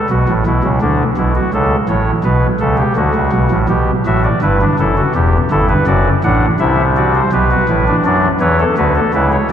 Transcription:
0.10 0.25 B1 medium
0.10 0.26 B2 medium
0.10 0.32 F#4 medium
0.28 0.44 A1 medium
0.28 0.43 A2 medium
0.46 0.62 B1 medium
0.46 0.61 B2 medium
0.46 0.69 E4 medium
0.64 0.79 C#2 medium
0.64 0.79 C#3 medium
0.81 1.04 D2 medium
0.81 1.04 D3 medium
0.81 1.04 D4 medium
1.17 1.40 B1 medium
1.17 1.40 B2 medium
1.17 1.33 E4 medium
1.35 1.51 F#4 medium
1.54 1.76 C#2 medium
1.54 1.76 C#3 medium
1.54 1.76 A4 medium
1.89 2.11 A1 medium
1.89 2.11 A2 medium
1.89 2.11 C#5 medium
2.24 2.47 B1 medium
2.24 2.47 B2 medium
2.24 2.47 B4 medium
2.60 2.83 C#2 medium
2.60 2.83 C#3 medium
2.60 2.76 A4 medium
2.78 2.94 G4 medium
2.96 3.12 D2 medium
2.96 3.12 D3 medium
2.96 3.59 F#4 medium
3.15 3.30 C#2 medium
3.15 3.31 C#3 medium
3.32 3.48 B1 medium
3.32 3.48 B2 medium
3.51 3.67 A1 medium
3.51 3.66 A2 medium
3.69 3.91 B1 medium
3.69 3.91 B2 medium
3.69 3.91 G4 medium
4.06 4.29 A1 medium
4.06 4.28 A2 medium
4.06 4.28 F#4 medium
4.06 4.22 E5 medium
4.24 4.39 D5 medium
4.42 4.64 G1 medium
4.42 4.64 G2 medium
4.42 4.58 E4 medium
4.42 4.65 B4 medium
4.61 4.76 D4 medium
4.79 5.01 F#1 medium
4.79 5.02 F#2 medium
4.79 4.95 E4 medium
4.79 5.02 A4 medium
4.97 5.13 F#4 medium
5.15 5.38 E1 medium
5.15 5.37 E2 medium
5.15 5.38 G4 medium
5.51 5.73 G1 medium
5.51 5.73 G2 medium
5.51 5.74 E4 medium
5.51 5.67 A4 medium
5.69 5.85 B4 medium
5.87 6.10 F#1 medium
5.87 6.09 F#2 medium
5.87 6.09 F#4 medium
5.87 6.09 D5 loud
6.24 6.46 A1 medium
6.24 6.46 A2 medium
6.24 6.46 D4 medium
6.24 6.46 F#5 medium
6.59 7.22 C2 medium
6.59 7.22 C3 medium
6.59 6.82 E4 medium
6.59 6.82 E5 medium
6.97 7.19 F#4 medium
6.97 7.12 D5 medium
7.15 7.30 C5 medium
7.33 7.55 B1 medium
7.33 7.55 B2 medium
7.33 7.48 G4 medium
7.33 7.95 B4 medium
7.51 7.66 F#4 medium
7.69 7.91 A1 medium
7.69 7.91 A2 medium
7.69 7.85 E4 medium
7.88 8.03 D4 medium
8.05 8.28 F#2 medium
8.05 8.28 F#3 medium
8.05 8.28 D4 medium
8.05 8.28 D5 medium
8.40 8.64 E2 medium
8.40 8.63 E3 medium
8.40 8.57 B4 medium
8.40 8.64 C#5 medium
8.59 8.75 A4 loud
8.77 9.00 D2 medium
8.77 9.00 D3 medium
8.77 9.00 F#4 medium
8.77 8.94 B4 medium
8.96 9.12 A4 medium
9.14 9.37 C#2 medium
9.14 9.36 C#3 medium
9.14 9.36 E4 medium
9.14 9.30 B4 medium
9.32 9.48 C#5 medium

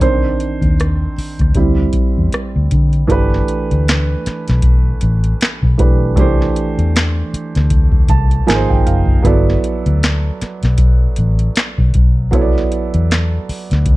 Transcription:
0.01 0.32 C2 medium
0.01 1.13 D#3 soft
0.01 1.13 C4 soft
0.01 1.13 D4 medium
0.01 0.74 C5 medium
0.01 kick loud
0.01 closed hi-hat medium
0.40 closed hi-hat medium
0.61 1.06 D#2 medium
0.61 kick medium
0.61 closed hi-hat soft
0.80 cross-stick medium
0.80 closed hi-hat medium
1.18 muted fingered electric bass stroke soft
1.18 open hi-hat soft
1.39 1.52 D2 medium
1.39 kick medium
1.39 cross-stick soft
1.39 closed hi-hat soft
1.54 1.86 D2 medium
1.54 3.05 G3 soft
1.54 3.06 C4 soft
1.54 3.06 E4 medium
1.54 kick medium
1.54 closed hi-hat medium
1.93 muted fingered electric bass stroke soft
1.93 kick medium
1.93 closed hi-hat medium
2.18 2.30 E2 medium
2.32 muted fingered electric bass stroke soft
2.32 cross-stick loud
2.32 closed hi-hat medium
2.56 2.68 D2 medium
2.71 3.02 D3 medium
2.71 kick medium
2.71 closed hi-hat medium
2.93 closed hi-hat soft
3.07 3.40 G1 loud
3.07 5.73 E3 medium
3.07 5.74 A3 medium
3.07 5.74 D4 medium
3.07 5.75 G4 medium
3.07 kick loud
3.07 closed hi-hat medium
3.12 5.76 B4 medium
3.34 snare soft
3.48 closed hi-hat medium
3.71 4.14 D2 medium
3.71 closed hi-hat soft
3.88 snare loud
3.88 clap medium
3.88 closed hi-hat medium
4.26 muted fingered electric bass stroke soft
4.26 snare soft
4.26 closed hi-hat medium
4.48 4.92 B1 medium
4.48 snare soft
4.48 closed hi-hat soft
4.62 kick medium
4.62 closed hi-hat medium
5.01 5.33 A1 loud
5.01 closed hi-hat medium
5.24 closed hi-hat soft
5.41 snare loud
5.41 clap medium
5.41 closed hi-hat medium
5.63 5.76 B1 medium
5.63 kick medium
5.78 6.17 B1 medium
5.78 6.16 E3 medium
5.78 6.15 A3 medium
5.78 6.16 D4 medium
5.78 6.17 G4 soft
5.78 6.17 B4 medium
5.78 kick loud
5.78 closed hi-hat medium
6.15 6.47 C2 loud
6.15 6.24 D#3 medium
6.15 8.43 A3 medium
6.15 8.44 D4 medium
6.15 8.44 G4 medium
6.15 kick loud
6.15 closed hi-hat medium
6.20 8.46 E3 medium
6.20 8.45 C5 medium
6.42 snare soft
6.56 closed hi-hat medium
6.79 7.21 E2 medium
6.79 closed hi-hat soft
6.96 snare loud
6.96 clap medium
6.96 closed hi-hat medium
7.34 muted fingered electric bass stroke soft
7.34 closed hi-hat medium
7.55 8.11 D2 medium
7.55 snare soft
7.55 closed hi-hat soft
7.70 kick loud
7.70 closed hi-hat medium
7.92 kick medium
8.08 8.40 C2 loud
8.08 8.45 A5 medium
8.08 kick medium
8.08 closed hi-hat medium
8.31 closed hi-hat soft
8.47 8.66 G#1 loud
8.47 9.24 F3 medium
8.47 9.24 A#3 medium
8.47 9.24 D#4 medium
8.47 9.25 G#4 medium
8.47 8.55 A#4 medium
8.47 8.68 G#5 medium
8.47 snare loud
8.47 closed hi-hat medium
8.51 clap medium
8.55 9.28 C5 medium
8.70 8.83 G#1 medium
8.70 8.85 G5 medium
8.70 kick loud
8.86 9.17 F#1 medium
8.86 9.22 F5 medium
8.86 closed hi-hat medium
9.06 kick medium
9.22 9.55 G1 loud
9.22 12.27 F#3 medium
9.22 12.28 B3 medium
9.22 12.28 E4 medium
9.22 12.29 A4 medium
9.22 kick loud
9.22 closed hi-hat medium
9.27 12.29 D5 medium
9.50 snare soft
9.64 closed hi-hat medium
9.86 10.29 D2 loud
9.86 closed hi-hat soft
10.03 snare loud
10.03 clap medium
10.03 closed hi-hat medium
10.41 muted fingered electric bass stroke soft
10.41 snare soft
10.41 closed hi-hat medium
10.63 11.06 B1 medium
10.63 snare soft
10.63 closed hi-hat soft
10.78 kick medium
10.78 closed hi-hat medium
11.16 11.48 A1 loud
11.16 closed hi-hat medium
11.39 closed hi-hat soft
11.56 snare loud
11.56 clap medium
11.56 closed hi-hat medium
11.78 11.91 B1 medium
11.78 kick medium
11.94 12.33 B1 medium
11.94 kick loud
11.94 closed hi-hat medium
12.31 12.63 C2 loud
12.31 13.97 F#3 medium
12.31 13.97 B3 medium
12.31 13.97 E4 medium
12.31 13.97 A4 medium
12.31 kick loud
12.31 closed hi-hat medium
12.35 12.41 C#5 medium
12.42 13.97 D5 medium
12.58 snare soft
12.72 closed hi-hat medium
12.94 13.37 E2 medium
12.94 closed hi-hat soft
13.11 snare loud
13.11 clap medium
13.11 closed hi-hat medium
13.49 muted fingered electric bass stroke soft
13.49 open hi-hat soft
13.71 13.97 D2 medium
13.71 snare soft
13.71 closed hi-hat soft
13.86 kick medium
13.86 closed hi-hat medium

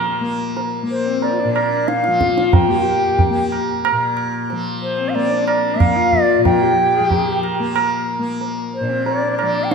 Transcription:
0.00 1.44 A#2 medium
0.00 2.07 F3 medium
0.00 0.21 A#3 medium
0.21 0.83 A#3 soft
0.57 tabla tin medium
0.83 2.68 A#3 medium
0.90 1.20 C5 medium
1.06 1.33 C4 soft
1.22 1.53 D5 medium
1.22 tabla tin medium
1.31 1.41 F4 soft
1.40 1.71 D4 medium
1.44 3.91 A#2 medium
1.54 1.89 D5 medium
1.54 tabla na medium
1.72 2.07 D4 soft
1.88 2.55 F5 medium
1.88 tabla te medium
2.04 4.52 F3 medium
2.04 2.71 F4 medium
2.04 tabla te soft
2.21 tabla ke soft
2.38 tabla te medium
2.53 3.52 G5 medium
2.53 tabla tin medium
2.53 tabla ge medium
2.68 3.30 A#3 medium
2.68 2.78 G4 medium
2.76 2.84 F4 soft
2.82 3.67 G4 medium
3.19 tabla tin medium
3.19 tabla ge medium
3.30 5.15 A#3 medium
3.52 tabla na soft
3.85 tabla na medium
3.92 6.37 A#2 medium
4.17 tabla na medium
4.50 7.00 F3 medium
4.50 tabla tin medium
4.83 5.11 C5 medium
4.98 5.32 C4 soft
5.09 5.17 F5 soft
5.15 5.75 A#3 soft
5.15 5.47 D5 medium
5.15 tabla tin medium
5.30 5.98 D4 medium
5.48 5.81 D5 medium
5.48 tabla na medium
5.75 7.60 A#3 soft
5.80 6.23 F5 medium
5.80 tabla na medium
5.80 tabla ge medium
5.96 6.63 F4 medium
6.12 tabla ge soft
6.23 6.44 D5 medium
6.38 8.80 A#2 medium
6.45 7.39 G5 medium
6.45 tabla tin medium
6.45 tabla ge medium
6.62 7.60 G4 medium
7.00 9.42 F3 medium
7.11 tabla tin medium
7.11 tabla ge medium
7.43 tabla na soft
7.60 8.19 A#3 medium
7.76 tabla na medium
8.19 9.75 A#3 medium
8.41 tabla tin medium
8.75 9.07 C5 medium
8.81 9.75 A#2 medium
8.81 8.91 D4 soft
8.89 9.23 C4 soft
9.06 9.38 D5 medium
9.06 tabla tin medium
9.22 9.75 D4 medium
9.38 9.65 D5 medium
9.38 tabla na soft
9.42 9.75 F3 medium
9.64 9.72 G5 medium
9.71 9.75 F5 medium
9.71 tabla te medium

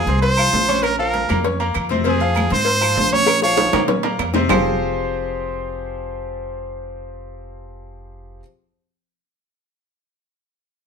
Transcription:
0.00 0.18 G#4 medium
0.06 0.49 C2 medium
0.06 0.33 C4 medium
0.06 0.33 C5 medium
0.06 0.33 C6 medium
0.06 cowbell medium
0.06 high conga soft
0.22 0.85 C5 loud
0.22 cowbell loud
0.22 low agogo medium
0.37 0.63 F3 medium
0.37 0.64 F4 medium
0.37 0.63 F5 medium
0.37 high conga soft
0.37 low agogo loud
0.37 claves medium
0.53 1.24 A#1 medium
0.53 cowbell medium
0.53 high conga medium
0.53 low timbale medium
0.68 0.93 C#4 medium
0.68 0.94 C#5 medium
0.68 0.94 C#6 medium
0.68 high conga medium
0.68 low agogo medium
0.83 0.99 A#4 medium
0.83 cowbell loud
0.83 high conga soft
0.83 low agogo loud
0.83 claves medium
0.99 1.24 F3 medium
0.99 1.24 F4 medium
0.99 1.41 A#4 medium
0.99 1.24 F5 medium
1.14 cowbell medium
1.14 high conga medium
1.14 low agogo medium
1.29 1.72 F2 loud
1.29 1.42 A#3 medium
1.29 1.42 A#4 medium
1.29 1.42 A#5 medium
1.29 high conga loud
1.29 low conga medium
1.29 low agogo loud
1.29 claves medium
1.44 1.57 C#4 medium
1.44 1.57 C#5 medium
1.44 1.57 C#6 medium
1.44 cowbell loud
1.44 high conga soft
1.60 1.85 A#3 medium
1.60 1.85 A#4 medium
1.60 1.85 A#5 medium
1.60 high conga soft
1.60 low agogo medium
1.74 2.46 F2 medium
1.74 cowbell medium
1.74 high conga soft
1.74 low agogo loud
1.74 claves medium
1.89 2.03 C3 medium
1.89 2.03 C4 loud
1.89 2.03 C5 medium
1.89 cowbell medium
1.89 high conga medium
2.04 2.18 C3 medium
2.04 2.18 C4 medium
2.04 2.18 C5 medium
2.04 cowbell loud
2.04 high conga soft
2.04 low agogo medium
2.09 2.50 G#4 medium
2.20 2.46 F3 medium
2.20 2.46 F4 medium
2.20 2.46 F5 medium
2.20 high conga soft
2.20 low agogo medium
2.35 cowbell medium
2.35 high conga loud
2.35 low agogo loud
2.35 claves medium
2.50 2.94 G#2 medium
2.50 2.77 C4 medium
2.50 2.77 C5 medium
2.50 3.14 C5 loud
2.50 2.77 C6 medium
2.50 cowbell medium
2.50 high conga soft
2.65 cowbell loud
2.65 high conga soft
2.65 low agogo medium
2.81 3.07 F3 medium
2.81 3.07 F4 medium
2.81 3.07 F5 medium
2.81 high conga soft
2.81 low agogo loud
2.81 claves medium
2.95 3.68 A#1 medium
2.95 cowbell medium
2.95 high conga medium
2.95 low timbale medium
3.13 3.38 C#4 medium
3.13 3.38 C#5 medium
3.13 3.43 C#5 loud
3.13 3.38 C#6 medium
3.13 high conga medium
3.13 low agogo medium
3.26 cowbell loud
3.26 high bongo loud
3.26 high conga soft
3.26 low agogo loud
3.26 claves medium
3.42 3.68 F3 medium
3.42 3.68 F4 medium
3.42 3.86 C#5 loud
3.42 3.69 F5 medium
3.42 high bongo medium
3.42 high conga soft
3.57 cowbell medium
3.57 high bongo medium
3.57 high conga medium
3.57 high timbale medium
3.57 low agogo medium
3.73 4.16 A#2 medium
3.73 3.86 A#3 medium
3.73 3.86 A#4 medium
3.73 3.86 A#5 medium
3.73 low bongo loud
3.73 high conga loud
3.73 low conga medium
3.73 high timbale loud
3.73 low agogo loud
3.73 claves medium
3.88 4.01 C#4 medium
3.88 4.01 C#5 medium
3.88 4.01 C#6 medium
3.88 cowbell loud
3.88 low bongo medium
3.88 high conga soft
3.88 low conga medium
3.88 low timbale medium
4.03 4.29 A#3 medium
4.03 4.29 A#4 medium
4.03 4.30 A#5 medium
4.03 low bongo medium
4.03 high conga soft
4.03 low timbale medium
4.03 low agogo loud
4.19 4.46 F2 medium
4.19 cowbell medium
4.19 high conga soft
4.19 low timbale medium
4.19 low agogo loud
4.19 claves medium
4.34 4.47 C3 loud
4.34 4.47 C4 medium
4.34 4.48 C5 loud
4.34 cowbell medium
4.34 low bongo medium
4.34 high conga medium
4.34 low timbale medium
4.49 8.40 F1 medium
4.49 8.40 F3 medium
4.49 8.40 C4 medium
4.49 8.40 F4 medium
4.49 8.40 G4 medium
4.49 8.40 G#4 medium
4.49 8.40 C5 loud
4.49 low bongo medium
4.49 low conga medium
4.49 low timbale loud
4.49 claves loud

